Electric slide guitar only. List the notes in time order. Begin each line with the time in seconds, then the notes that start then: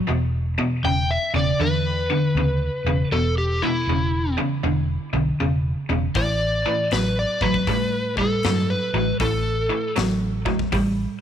0.85 G5
1.11 E5
1.36 D5
1.61 B4
3.12 A4
3.38 G4
3.62 E4
6.16 D5
6.93 B4
7.19 D5
7.42 B4
8.19 A4
8.70 B4
9.21 A4